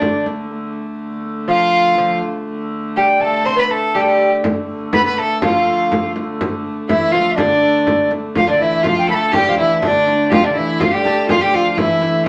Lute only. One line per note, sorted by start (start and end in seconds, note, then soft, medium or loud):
0.00 0.21 D3 medium
1.48 1.97 F3 medium
1.98 2.21 F3 medium
2.97 3.22 G3 medium
3.20 3.45 A3 medium
3.46 3.55 C4 medium
3.56 3.69 B3 medium
3.70 3.95 A3 medium
3.95 4.29 G3 medium
4.93 5.04 B3 medium
5.05 5.16 B3 medium
5.18 5.43 A3 medium
5.43 6.12 F3 medium
6.89 7.12 E3 medium
7.14 7.39 F3 medium
7.38 8.08 D3 medium
8.36 8.49 F3 medium
8.49 8.61 D3 medium
8.62 8.84 E3 medium
8.87 9.11 F3 medium
9.12 9.36 A3 medium
9.36 9.48 G3 medium
9.48 9.60 F3 medium
9.60 9.82 E3 medium
9.83 10.33 D3 medium
10.33 10.45 F3 medium
10.46 10.57 D3 medium
10.57 10.82 E3 medium
10.82 10.94 F3 medium
10.94 11.06 G3 medium
11.06 11.31 A3 medium
11.30 11.42 F3 medium
11.43 11.53 G3 medium
11.53 11.79 F3 medium
11.78 12.28 E3 medium